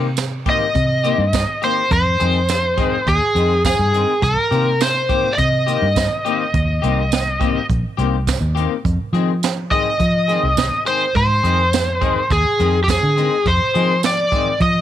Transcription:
Already playing: C3
0.17 snare, closed hi-hat, tambourine
0.46 D#3 A#3 C4 G4 D#5, kick, closed hi-hat
0.75 C3, kick, closed hi-hat
1.04 D#3 A#3 C4 G4, closed hi-hat
1.18 G2
1.33 kick, snare, closed hi-hat, tambourine
1.62 D#3 A#3 C4 G4 C5, closed hi-hat
1.91 F2 C5, kick, closed hi-hat
2.20 F2 D#3 G#3 C4 G#4, closed hi-hat
2.49 snare, closed hi-hat, tambourine
2.77 D#3 G#3 C4 G#4, kick, closed hi-hat
3.07 D#2 G#4, kick, closed hi-hat
3.35 F2 D#3 G#3 C4 G#4, closed hi-hat
3.65 G#4, kick, snare, closed hi-hat, tambourine
3.79 G2
3.92 D#3 G#3 C4 G#4, closed hi-hat
4.22 C2 A#4, kick, closed hi-hat
4.51 C3 D#3 A#3 C4 G4, closed hi-hat
4.81 C5, snare, closed hi-hat, tambourine
5.09 D#3 A#3 C4 G4, kick, closed hi-hat
5.33 D5
5.38 C3 D#5, kick, closed hi-hat
5.66 D#3 A#3 C4 G4, closed hi-hat
5.82 G2
5.96 kick, snare, closed hi-hat, tambourine
6.25 D#3 A#3 C4 G4, closed hi-hat
6.54 D#2, kick, closed hi-hat
6.82 C2 D#3 A#3 C4 G4, closed hi-hat
7.12 snare, closed hi-hat, tambourine
7.39 D#3 A#3 C4 G4, kick, closed hi-hat
7.70 A#1, kick, closed hi-hat
7.97 C2 D#3 A#3 C4 G4, closed hi-hat
8.27 kick, snare, closed hi-hat, tambourine
8.41 D#2
8.55 D#3 A#3 C4 G4, closed hi-hat
8.85 F2, kick, closed hi-hat
9.13 D#3 F3 G#3 C4 G#4, closed hi-hat
9.43 snare, closed hi-hat, tambourine
9.71 D#3 G#3 C4 G#4 D#5, kick, closed hi-hat
10.00 F3, kick, closed hi-hat
10.28 D#3 G#3 C4 G#4, closed hi-hat
10.43 C2
10.57 kick, snare, closed hi-hat, tambourine
10.85 D#3 G#3 C4 G#4 C5, closed hi-hat
11.15 G#2 C5, kick, closed hi-hat
11.43 F2 D#3 G#3 C4 G#4, closed hi-hat
11.73 snare, closed hi-hat, tambourine
12.01 D#3 G#3 C4 G#4, kick, closed hi-hat
12.30 D#2 G#4, kick, closed hi-hat
12.58 F2 D#3 G#3 C4 G#4, closed hi-hat
12.84 G4
12.88 G#4, kick, snare, closed hi-hat, tambourine
13.03 D3
13.16 D#3 G#3 C4 G#4, closed hi-hat
13.46 F2 C5, kick, closed hi-hat
13.74 D#3 F3 G#3 C4 G#4, closed hi-hat
14.03 D5, snare, closed hi-hat, tambourine
14.32 D#3 G#3 C4 G#4, kick, closed hi-hat
14.60 F3 D#5, kick, closed hi-hat

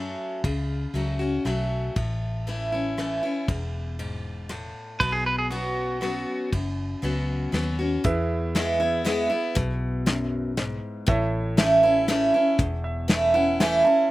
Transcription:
Already playing: F#2 F#3 A3 C#4 F#4
0.44 C#2 C#3, kick, ride
0.94 C#2 F#3 A3 C#4 F#4, ride
1.19 C#4 F#4
1.45 B1 F#3 A3 C#4 F#4, cross-stick, ride
1.96 A1 A2, kick, ride
2.47 E3 A3 C#4 E4, ride
2.72 C#4 E4
2.98 E3 A3 C#4 E4, cross-stick, ride
3.23 C#4 E4
3.48 E1 E2, kick, ride
3.99 G#2, ride
4.49 A2, cross-stick, ride
5.00 B1 B2 B4, kick, ride
5.12 G#4
5.26 B4
5.38 G#4
5.50 F#3 B3 C#4 F#4, ride
6.01 F#3 B3 C#4 F#4, cross-stick, ride
6.52 F#1 F#2, kick, ride
7.02 C#2 F#3 B3 C#4 F#4, ride
7.52 D#2 F#3 B3 C#4 F#4, snare, ride
7.79 C#4 F#4
8.04 E2 E4 G#4 B4 E5, kick, closed hi-hat
8.55 E3 G#3 B3 E4, snare, closed hi-hat
8.80 B3 E4
9.05 E3 G#3 B3 E4, snare, closed hi-hat
9.30 B3 E4
9.55 B1 B2, kick, closed hi-hat
10.06 F#2, snare, closed hi-hat
10.57 G#2, snare, closed hi-hat
11.07 A1 A2 E4 A4 C#5 E5, kick, closed hi-hat
11.57 E3 A3 C#4 E4, snare, closed hi-hat
11.83 C#4 E4
12.08 E3 A3 C#4 E4, snare, closed hi-hat
12.34 C#4 E4
12.58 E1 E2, kick, closed hi-hat
12.84 E5
13.08 E3 A3 C#4 E4, snare, closed hi-hat
13.34 C#4 E4 F#5
13.60 E3 A3 C#4 E4 G#5, snare, closed hi-hat
13.85 C#4 E4 A5

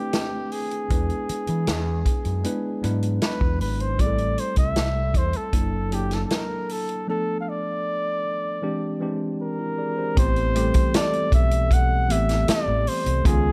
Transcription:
Already playing: A3 C4 D4 E4 G4 B4
0.13 snare, closed hi-hat
0.52 G#4, open hi-hat
0.71 closed hi-hat
0.89 E2 G#3 B3 D4 E4 B4, kick, closed hi-hat
1.09 closed hi-hat
1.29 muted fingered electric bass stroke, closed hi-hat
1.47 E3, closed hi-hat
1.67 E2, snare, closed hi-hat
2.06 kick, closed hi-hat
2.25 F#2, closed hi-hat
2.44 G#3 B3 D4 E4 B4, closed hi-hat
2.83 G#2 F#3 B3 D4 E4 B4, closed hi-hat
2.89 G#3
3.02 closed hi-hat
3.22 B4, snare, closed hi-hat
3.41 E2, kick
3.60 G#1 B4, open hi-hat
3.80 C5, closed hi-hat
3.98 A1 G3 A3 C4 E4 G#4 D5, kick, closed hi-hat
4.06 A4
4.18 closed hi-hat
4.38 C5, closed hi-hat
4.56 C2 E5, kick, closed hi-hat
4.76 C2, snare, closed hi-hat
5.14 E2 C5, kick, closed hi-hat
5.33 A4, closed hi-hat
5.52 F#1 F#3 A#3 D4 E4 A4, kick, closed hi-hat
5.91 F#3 A#3 D4 E4 G4 A5, closed hi-hat
6.11 A4, snare, closed hi-hat
6.25 A4
6.30 A#4, snare, closed hi-hat
6.69 A4, open hi-hat
6.89 closed hi-hat
7.07 F3 A3 B3 D4 A4
7.41 F5
7.49 D5
8.62 E3 G#3 C4 D4 G4
9.00 E3 G#3 C4 D4 G4
9.42 A#4
9.59 E4 A#4
9.78 G#4 D5
9.98 G4 C5
10.16 A1 E3 A3 B3 C4 G4 C5, kick, closed hi-hat
10.36 closed hi-hat
10.54 E3 G3 A3 C4 G4 A4, closed hi-hat
10.74 kick, closed hi-hat
10.94 D5, snare, closed hi-hat
11.13 closed hi-hat
11.32 B1 E5, kick, closed hi-hat
11.51 closed hi-hat
11.71 F#5, kick, closed hi-hat
12.09 A1 E3 A3 B3 C4 G4 E5, closed hi-hat
12.29 snare, closed hi-hat
12.48 D5, muted fingered electric bass stroke, snare, closed hi-hat
12.68 A1
12.87 C5, open hi-hat
13.06 C2, closed hi-hat
13.24 C#2 D#3 G#3 B3 C#4 F4 G#4, kick, closed hi-hat

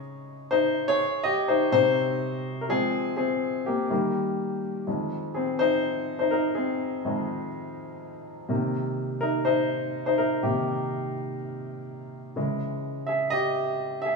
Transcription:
Already playing: C#3 G#3 D#4 G#4 C#5 D#5
0.51 D#4 C5
0.88 G#4 C#5
1.24 G4 D#5
1.48 D#4 C5
1.72 C3 C4 D#4 C5
2.61 A#4
2.69 F3 G#3 C4 G#4
3.17 C4 G#4
3.66 A#3 G4
3.90 D#3 G3 A#3
4.87 F2 D#3 G#3
5.34 C4 G#4
5.59 D#4 C5
6.19 D#4 C5
6.31 D#4 A#4
6.55 C4 G#4
7.05 F2 D#3 G#3
8.49 C3 D#3 A#3
9.21 D#4 A#4
9.45 D#4 C5
10.06 D#4 C5
10.18 D#4 A#4
10.43 C3 D#3 A#3 G4
12.36 C#3 E3 G#3
13.07 G#4 E5
13.30 G4 D#5
14.02 G#4 E5

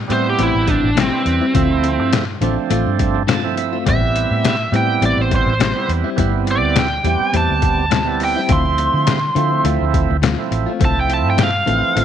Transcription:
0.08 A2 G3 B3 C4 E4, closed hi-hat
0.12 E4 C5
0.26 G4, muted clean electric guitar stroke
0.38 A1 A2 G3 C4 E4, closed hi-hat
0.43 E4
0.55 A1
0.67 D4, muted clean electric guitar stroke, kick, closed hi-hat
0.83 A1, muted clean electric guitar stroke
0.96 A2 G3 C4 E4, snare, closed hi-hat
1.00 C4
1.11 G3 C4 E4 B4, muted clean electric guitar stroke
1.25 E2, muted clean electric guitar stroke, closed hi-hat
1.41 G3 C4 E4
1.53 D2 D3 F3 A3 C4 E4 F4, kick, closed hi-hat
1.70 muted clean electric guitar stroke
1.83 muted clean electric guitar stroke, closed hi-hat
1.99 G2
2.12 muted clean electric guitar stroke, snare, closed hi-hat
2.41 A1 D3 F3 A3 C4 D4 F4, closed hi-hat
2.57 muted fingered electric bass stroke, muted clean electric guitar stroke
2.70 A1 D3 A3 C4 F4, closed hi-hat
2.86 G2
2.99 muted clean electric guitar stroke, kick, closed hi-hat
3.15 muted clean electric guitar stroke
3.27 D3 A3 C4 F4 A5, snare, closed hi-hat
3.43 F3 A3 C4 E4, muted clean electric guitar stroke
3.57 E5, muted clean electric guitar stroke, closed hi-hat
3.73 A3 C4 F4
3.85 A1 A2 G3 B3 C4 E4, kick, closed hi-hat
3.89 E5
4.14 muted clean electric guitar stroke, closed hi-hat
4.31 A2
4.44 muted clean electric guitar stroke, snare, closed hi-hat
4.72 A2 G3 B3 C4 E4, closed hi-hat
4.76 G5
4.89 muted clean electric guitar stroke
5.01 A1 A2 G3 C4 E4, closed hi-hat
5.05 D5
5.17 A1
5.21 C5
5.31 muted clean electric guitar stroke, kick, closed hi-hat
5.36 C5
5.46 A1, muted clean electric guitar stroke
5.59 A2 G3 C4 E4, snare, closed hi-hat
5.74 G3 B3 C4 E4, muted clean electric guitar stroke
5.89 E2, muted clean electric guitar stroke, closed hi-hat
6.04 G3 C4 E4
6.16 G1 A2 G3 B3 C4 E4, kick, closed hi-hat
6.33 muted clean electric guitar stroke
6.47 muted clean electric guitar stroke, closed hi-hat
6.51 D5
6.62 D2
6.76 G5, muted clean electric guitar stroke, snare, closed hi-hat
7.03 E2 A2 G3 B3 C4 E4 G4, closed hi-hat
7.20 muted fingered electric bass stroke, muted clean electric guitar stroke
7.33 E2 A2 G3 C4 E4, closed hi-hat
7.37 A5
7.50 D2
7.62 muted clean electric guitar stroke, kick, closed hi-hat
7.78 muted clean electric guitar stroke
7.90 A2 G3 C4 E4, snare, closed hi-hat
8.06 G3 B3 C4 E4, muted clean electric guitar stroke
8.20 muted clean electric guitar stroke, open hi-hat
8.25 G5
8.36 G3 C4 E4
8.48 D2 D3 F3 A3 C4 E4 F4, kick, closed hi-hat
8.52 C6
8.65 muted clean electric guitar stroke
8.78 muted clean electric guitar stroke, closed hi-hat
8.94 D3
9.07 muted clean electric guitar stroke, snare, closed hi-hat
9.35 D3 F3 A3 C4 E4 F4, closed hi-hat
9.53 muted clean electric guitar stroke
9.64 D2 D3 A3 C4 F4, closed hi-hat
9.81 D2
9.94 muted clean electric guitar stroke, kick, closed hi-hat
10.10 D2, muted clean electric guitar stroke
10.22 D3 A3 C4 F4, snare, closed hi-hat
10.38 F3 A3 C4 E4, muted clean electric guitar stroke
10.51 A1, muted clean electric guitar stroke, closed hi-hat
10.66 A3 C4 F4
10.79 C2 D3 F3 A3 C4 E4 F4, kick, closed hi-hat
10.85 A5
10.96 muted clean electric guitar stroke
11.01 G5
11.09 muted clean electric guitar stroke, closed hi-hat
11.13 A5
11.25 G2
11.30 G5
11.37 muted clean electric guitar stroke, snare, closed hi-hat
11.43 F5
11.66 A1 D3 E3 F3 A3 C4 F4, closed hi-hat
11.83 muted clean electric guitar stroke, muted fingered electric bass stroke
11.96 A1 D3 A3 C4 F4, closed hi-hat

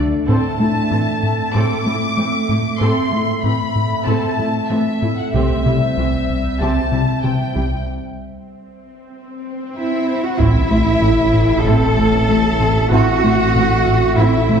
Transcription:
Already playing: D2 A3 D4 A4 D5
0.28 A2 A3 C4 A4 E5 A5
0.60 A2 A3 E4
0.91 A2 E3 C4
1.23 A2
1.54 A2 C4 A4 D6
1.86 A2 A3 E4
2.17 A2 E3 A3 C4
2.49 A2 A3 E4
2.81 A2 C4 A4 C6
3.12 A2 A3 E4
3.43 A2 E3 C4 B5
3.76 A2
4.07 A2 C4 A4 A5
4.38 A2 A3 E4
4.69 A2 E3 A3 C4 E5
5.02 A2 A3 E4
5.17 F#5
5.33 C2 C3 G3 C4 G4 C5 E5
5.65 C3 G3 E4
5.97 C2 C3 E3 C4
6.29 C2
6.60 C2 C3 C4 G4 A5
6.92 C3 G3 E4
7.22 C3 E3 C4 G5
7.55 C2 C3 G3 E4
7.87 swell
9.77 E4 E5
10.24 F#4 F#5
10.39 A1 A2 A3 C4 E4 A4 E5, sub drop
10.71 A1 A3 C4
11.02 A1 A2 E3 A3
11.34 A2
11.65 A1 A2 C4 E4 A4 A5
11.97 A1 A3 C4
12.29 A1 E3 A3
12.60 A1 A2 A3 C4
12.91 A1 A2 C4 E4 F#4 F#5
13.23 A1 A3 C4
13.55 A1 A2 E3 A3
13.86 A2
14.17 A1 A2 C4 E4 E5
14.49 A1 A3 C4

